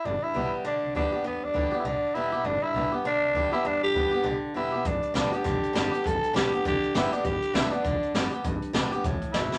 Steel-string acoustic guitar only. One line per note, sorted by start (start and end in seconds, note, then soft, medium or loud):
0.05 0.63 G2 medium
0.34 0.63 D3 medium
0.34 0.64 G3 medium
0.34 0.64 B3 medium
0.34 0.64 G4 medium
0.65 0.94 D3 medium
0.95 1.12 D3 medium
0.95 1.12 G3 medium
0.95 1.12 B3 medium
0.95 1.11 G4 medium
1.12 1.25 B3 soft
1.12 1.24 G4 medium
1.24 1.82 G2 medium
1.54 1.71 D3 medium
1.54 1.72 G3 medium
1.54 1.72 B3 medium
1.54 1.70 G4 medium
1.71 1.85 B3 soft
1.71 1.84 G4 medium
1.85 2.14 D3 medium
2.15 2.32 D3 medium
2.15 2.32 G3 medium
2.15 2.32 B3 medium
2.15 2.31 G4 medium
2.32 2.46 B3 soft
2.32 2.44 G4 medium
2.45 3.02 G2 medium
2.74 2.91 D3 medium
2.74 2.92 G3 medium
2.74 2.92 B3 medium
2.74 2.91 G4 medium
2.92 3.05 B3 soft
2.92 3.04 G4 medium
3.05 3.33 D3 loud
3.34 3.51 D3 medium
3.34 3.52 G3 medium
3.34 3.52 B3 medium
3.34 3.50 G4 medium
3.52 3.65 B3 medium
3.52 3.64 G4 medium
3.65 4.22 G2 medium
3.95 4.12 D3 medium
3.95 4.12 G3 medium
3.95 4.12 B3 medium
3.95 4.10 G4 medium
4.11 4.25 B3 soft
4.11 4.24 G4 medium
4.24 4.53 D3 medium
4.54 4.72 D3 medium
4.54 4.72 G3 medium
4.54 4.73 B3 medium
4.54 4.71 G4 medium
4.72 4.86 B3 soft
4.72 4.84 G4 medium
4.85 5.43 G2 medium
5.14 5.31 D3 medium
5.14 5.32 G3 medium
5.14 5.32 B3 medium
5.14 5.30 G4 medium
5.31 5.45 B3 medium
5.31 5.44 G4 medium
5.44 5.72 D3 loud
5.73 5.91 D3 medium
5.73 5.92 G3 medium
5.73 5.92 B3 medium
5.73 5.90 G4 loud
5.91 6.05 B3 soft
5.91 6.04 G4 medium
6.04 6.62 G2 medium
6.33 6.51 D3 medium
6.33 6.51 G3 medium
6.33 6.52 B3 medium
6.33 6.50 G4 medium
6.51 6.65 B3 medium
6.51 6.64 G4 medium
6.65 6.93 D3 loud
6.94 7.11 D3 medium
6.94 7.12 G3 medium
6.94 7.12 B3 medium
6.94 7.11 G4 loud
7.12 7.25 B3 soft
7.12 7.24 G4 medium
7.25 7.82 G2 medium
7.54 7.71 D3 medium
7.54 7.71 G3 medium
7.54 7.72 B3 loud
7.54 7.69 G4 loud
7.70 7.84 B3 soft
7.70 7.83 G4 medium
7.85 8.13 D3 medium
8.14 8.31 D3 medium
8.14 8.32 G3 medium
8.14 8.32 B3 medium
8.14 8.30 G4 loud
8.31 8.45 B3 soft
8.31 8.44 G4 medium
8.44 9.02 G2 medium
8.73 8.91 D3 loud
8.73 8.91 G3 medium
8.73 8.91 B3 loud
8.73 8.91 G4 medium
8.92 9.05 B3 soft
8.92 9.04 G4 medium
9.06 9.34 A2 medium
9.36 9.58 B2 medium